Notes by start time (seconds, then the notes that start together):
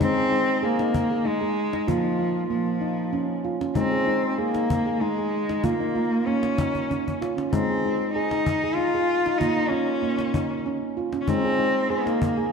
0.00 G#3 C4 D#4, cajon bass
0.16 G#4
0.31 D#4
0.62 A#3 G#4
0.79 D#4, cajon slap
0.94 cajon bass
1.11 G#4
1.25 G#3 D#4
1.41 G#4
1.73 D#4, cajon slap
1.88 F3 A#3 F4, cajon bass
2.04 D#4
2.19 F4
2.50 F3 A#3
2.81 D#4
3.13 C#4
3.44 F4
3.61 C#4, cajon slap
3.75 G#3 C4 D#4, cajon bass
3.92 G#4
4.07 D#4
4.32 C4
4.38 A#3 G#4
4.55 D#4, cajon slap
4.70 cajon bass
4.86 G#4
5.01 G#3 D#4
5.18 G#4
5.49 D#4, cajon slap
5.64 A#3 F4, cajon bass
5.80 D#4
5.95 F4, cajon slap
6.27 A#3 C#4
6.43 cajon slap
6.58 D#4, cajon bass
6.75 cajon bass
6.90 C#4, cajon bass
7.08 cajon bass
7.22 F4, cajon slap
7.37 C#4, cajon slap
7.52 G#3 C4 D#4, cajon bass
7.69 G#4
7.85 D#4
8.14 D#4 G#4
8.31 D#4, cajon slap
8.46 cajon bass
8.63 G#4
8.75 D#4 F4
8.94 G#4
9.26 D#4, cajon slap
9.38 A#3 D#4 F4, cajon bass
9.56 D#4
9.69 C#4 F4
10.02 A#3
10.19 cajon slap
10.34 D#4, cajon bass
10.66 C#4
10.97 F4
11.12 C#4, cajon slap
11.21 C#4
11.28 G#3 C4 D#4, cajon bass
11.45 G#4
11.59 D#4
11.90 A#3 G#4
12.06 D#4, cajon slap
12.22 cajon bass
12.37 G#4